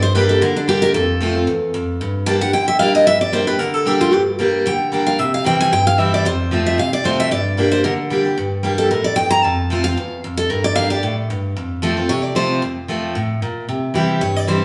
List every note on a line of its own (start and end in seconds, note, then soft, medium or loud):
0.00 0.39 G2 medium
0.00 0.14 C5 medium
0.15 0.40 G3 medium
0.15 0.41 A#3 medium
0.15 0.41 D4 loud
0.15 0.41 G4 loud
0.15 0.29 B4 medium
0.29 0.41 A4 medium
0.41 0.92 D3 medium
0.41 0.56 A#4 medium
0.57 0.68 D4 medium
0.68 0.93 G3 medium
0.68 0.94 A#3 medium
0.68 0.94 D4 medium
0.68 0.82 G4 medium
0.68 0.94 G4 loud
0.82 0.94 A#4 loud
0.94 1.45 F2 loud
0.94 1.44 A4 medium
1.21 1.35 F3 loud
1.21 1.35 A3 medium
1.21 1.35 C4 loud
1.21 1.34 F4 loud
1.35 1.48 C4 medium
1.35 1.47 F4 medium
1.47 1.73 E2 medium
1.74 1.99 F2 medium
2.01 2.51 G2 loud
2.26 2.41 G3 medium
2.26 2.41 A#3 loud
2.26 2.42 D4 loud
2.26 2.39 G4 loud
2.26 2.41 A5 loud
2.41 2.54 D4 medium
2.41 2.53 G4 medium
2.41 2.53 F#5 loud
2.53 3.04 D3 medium
2.53 2.67 G5 loud
2.68 2.79 E5 loud
2.79 3.06 G3 medium
2.79 3.06 A#3 medium
2.79 3.06 D4 loud
2.79 3.07 G4 medium
2.79 2.94 F5 loud
2.95 3.06 D#5 loud
3.07 3.58 G2 medium
3.07 3.21 E5 loud
3.21 3.33 D5 medium
3.32 3.47 G3 medium
3.32 3.47 A#3 medium
3.32 3.48 D4 medium
3.32 3.46 G4 loud
3.32 3.47 C5 medium
3.47 3.60 D4 medium
3.47 3.59 G4 medium
3.47 3.59 B4 medium
3.59 4.10 D3 medium
3.59 3.74 A#4 medium
3.74 3.86 A4 medium
3.86 4.11 G3 medium
3.86 4.12 A#3 medium
3.86 4.12 D4 medium
3.86 4.00 G4 medium
3.86 4.12 G4 medium
4.01 4.13 F4 medium
4.13 4.63 G2 loud
4.13 4.22 G4 medium
4.39 4.64 G3 medium
4.39 4.65 A#3 loud
4.39 4.65 D4 medium
4.39 4.66 G4 medium
4.66 5.17 D3 medium
4.66 5.04 G5 medium
4.92 5.18 G3 medium
4.92 5.18 A#3 medium
4.92 5.18 D4 loud
4.92 5.19 G4 loud
5.07 5.19 F5 medium
5.19 5.70 C3 medium
5.19 5.33 E5 medium
5.34 5.46 F5 loud
5.44 5.70 E3 medium
5.44 5.71 G3 medium
5.44 5.71 C4 loud
5.44 5.72 E4 medium
5.44 5.60 G5 medium
5.61 5.72 G#5 loud
5.72 6.23 G2 medium
5.72 5.86 G5 medium
5.87 5.99 F5 loud
5.98 6.24 E3 medium
5.98 6.24 G3 medium
5.98 6.25 C4 medium
5.98 6.25 E4 loud
5.98 6.13 E5 medium
6.14 6.25 D5 medium
6.25 6.76 F2 loud
6.25 6.64 C5 medium
6.51 6.77 F3 medium
6.51 6.77 A3 medium
6.51 6.78 C4 medium
6.51 6.78 F4 loud
6.66 6.78 E5 medium
6.78 7.29 C3 medium
6.78 6.93 F5 loud
6.93 7.05 D5 medium
7.04 7.30 F3 medium
7.04 7.30 A3 medium
7.04 7.31 C4 medium
7.04 7.31 F4 medium
7.04 7.19 C5 medium
7.20 7.31 E5 loud
7.31 7.82 G2 loud
7.31 7.70 D5 medium
7.57 7.83 G3 medium
7.57 7.83 A#3 loud
7.57 7.84 D4 loud
7.57 7.84 G4 loud
7.72 7.84 C5 medium
7.84 8.35 D3 medium
7.84 7.93 A#4 medium
8.10 8.25 G3 medium
8.10 8.25 A#3 medium
8.10 8.25 D4 medium
8.10 8.23 G4 medium
8.25 8.38 D4 medium
8.25 8.37 G4 medium
8.38 8.88 G2 medium
8.63 8.89 G3 loud
8.63 8.90 A#3 loud
8.63 8.90 D4 loud
8.63 8.90 G4 loud
8.78 8.90 A4 loud
8.91 9.16 A2 medium
8.91 9.05 A#4 medium
9.04 9.15 D5 medium
9.16 9.43 G2 medium
9.16 9.30 G5 loud
9.31 9.43 A#5 loud
9.43 9.95 F2 loud
9.43 9.84 A5 loud
9.70 9.84 F3 medium
9.70 9.85 A3 medium
9.70 9.85 C4 loud
9.70 9.83 F4 loud
9.84 9.97 C4 medium
9.84 9.96 F4 medium
9.84 10.20 F5 loud
9.97 10.22 E2 medium
10.24 10.49 F2 medium
10.37 10.50 A4 loud
10.50 11.01 G2 medium
10.50 10.64 A#4 medium
10.64 10.75 D5 loud
10.76 10.90 G3 loud
10.76 10.91 A#3 loud
10.76 10.91 D4 loud
10.76 10.90 G4 medium
10.76 10.90 F5 loud
10.90 11.04 D4 medium
10.90 11.03 G4 medium
10.90 11.15 D5 loud
11.03 11.28 A2 medium
11.30 11.55 G2 medium
11.57 12.07 F2 medium
11.82 11.96 F3 medium
11.82 11.97 A3 medium
11.82 11.97 C4 medium
11.82 11.96 F4 medium
11.82 12.07 A4 medium
11.97 12.10 C4 soft
11.97 12.09 F4 medium
12.09 12.60 C3 medium
12.09 12.23 C#5 medium
12.23 12.35 D5 loud
12.35 12.61 F3 medium
12.35 12.61 A3 medium
12.35 12.61 C4 medium
12.35 12.62 F4 medium
12.35 12.60 C5 medium
12.62 13.13 F2 loud
12.88 13.14 F3 medium
12.88 13.14 A3 medium
12.88 13.15 C4 medium
12.88 13.15 F4 medium
13.15 13.41 A2 medium
13.42 13.67 A#2 medium
13.69 14.19 C3 medium
13.94 14.20 E3 medium
13.94 14.20 G3 loud
13.94 14.21 C4 loud
13.94 14.21 E4 medium
13.94 14.20 G4 medium
14.21 14.65 G2 medium
14.21 14.36 C#5 medium
14.36 14.48 D5 loud
14.47 14.61 E3 medium
14.47 14.62 G3 medium
14.47 14.62 C4 medium
14.47 14.60 E4 medium
14.47 14.65 C5 medium
14.62 14.65 E4 medium